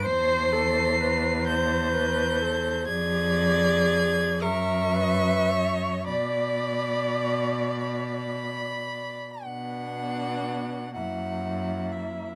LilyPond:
<<
  \new Staff \with { instrumentName = "Violin" } { \time 6/8 \key b \minor \tempo 4. = 40 c''''4. g'''4. | aes'''4. cis'''4. | b''4. b''4. | fis''4. fis''4 e''8 | }
  \new Staff \with { instrumentName = "Violin" } { \time 6/8 \key b \minor c''4. c''4. | d''4. e''4. | d''2. | d'4. e'4. | }
  \new Staff \with { instrumentName = "Viola" } { \time 6/8 \key b \minor c''8 a'8 b'8 c''8 b'8 a'8 | aes'4. ais'8 b'8 cis''8 | d''2~ d''16 r8. | b4. ais4. | }
  \new Staff \with { instrumentName = "Cello" } { \clef bass \time 6/8 \key b \minor e,2. | f,4. fis,4. | b,2. | b,4. fis,4. | }
>>